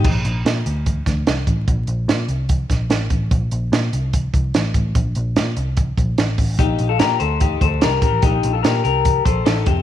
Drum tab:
CC |x-------|--------|--------|--------|
HH |-xxxxxxx|xxxxxxxx|xxxxxxxx|xxxxxxxo|
SD |--o--oo-|--o--oo-|--o---o-|--o---o-|
BD |o---oo-o|o---oo-o|o---oo-o|o---oo-o|

CC |--------|--------|
HH |xxxxxxxx|xxxxxxxx|
SD |--o---o-|--o---o-|
BD |o---oo-o|o---oo-o|